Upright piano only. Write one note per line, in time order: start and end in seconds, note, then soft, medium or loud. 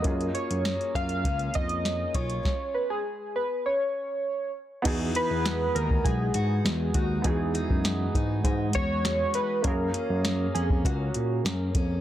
0.02 2.39 A#3 medium
0.02 2.40 C#4 soft
0.02 2.41 F4 medium
0.07 2.42 G#4 medium
4.82 7.19 B3 medium
4.82 7.20 D#4 medium
4.82 7.21 F#4 medium
4.87 7.22 G#4 medium
7.22 9.59 B3 medium
7.22 9.60 D#4 medium
7.22 9.61 F#4 medium
7.27 9.62 G#4 medium
9.62 11.99 A#3 medium
9.62 12.00 C#4 medium
9.62 12.01 F5 medium
9.67 12.01 G#4 medium